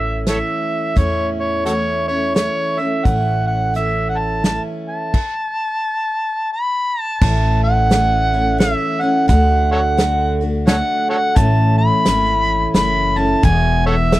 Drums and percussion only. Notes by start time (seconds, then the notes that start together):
0.27 snare, closed hi-hat
0.97 kick, closed hi-hat
1.66 closed hi-hat
2.36 snare, closed hi-hat
3.05 kick, closed hi-hat
3.75 closed hi-hat
4.44 snare, closed hi-hat
5.14 kick, crash
7.21 kick, crash
7.91 snare, closed hi-hat
8.60 snare, closed hi-hat
9.29 kick, closed hi-hat
9.98 snare, closed hi-hat
10.68 snare, closed hi-hat
11.36 kick, closed hi-hat
12.06 snare, closed hi-hat
12.75 snare, closed hi-hat
13.43 kick, closed hi-hat
14.12 snare, closed hi-hat